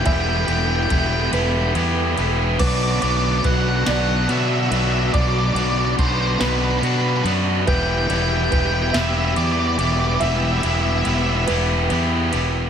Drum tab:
CC |------|x-----|------|------|
RD |xxxxxx|-xxxxx|xxxxxx|xxxxxx|
SD |------|---o--|---o--|---o--|
BD |o-o---|o-o---|o-o---|o-o---|

CC |------|
RD |xxxxxx|
SD |------|
BD |------|